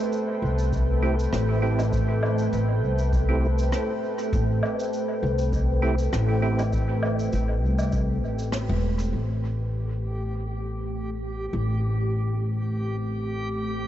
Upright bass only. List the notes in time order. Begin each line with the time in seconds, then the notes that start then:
0.42 C2
1.32 A1
2.53 A1
2.83 C2
4.33 A1
5.23 C2
6.13 A1
7.33 A1
7.63 C2
8.23 A1
8.69 E1
9.13 A1
11.53 A1